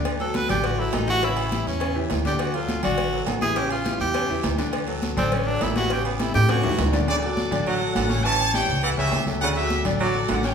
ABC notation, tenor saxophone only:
X:1
M:4/4
L:1/8
Q:1/4=205
K:D
V:1 name="Tenor saxophone"
z A B G F E _E F | E3 C2 z2 G | F =F2 ^F3 z ^G | G =F2 G3 z2 |
z3 =C ^C D E F | G B, E G F3 z | z8 | z8 |
z8 |]